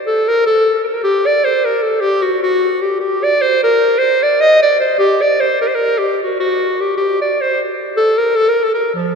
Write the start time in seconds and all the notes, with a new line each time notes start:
0.07 A4
0.28 A#4
0.46 A4
0.84 A4 A#4
0.94 A#4
1.03 G4
1.26 D5
1.44 C5
1.65 A#4
1.82 A4
2.01 G4
2.22 F#4
2.43 F#4
2.81 G4
3.00 G4
3.23 D5
3.41 C5
3.63 A#4
3.98 C5
4.22 D5
4.41 D#5
4.62 D5
4.80 C5
4.98 G4
5.21 D5
5.40 C5
5.61 A#4
5.67 C5
5.75 A#4
5.98 G4
6.23 F#4
6.39 F#4
6.80 G4
6.97 G4
7.21 D5
7.41 C5
7.97 A4
8.18 A#4
8.36 A4
8.49 A#4
8.64 A4
8.74 A#4
8.95 F3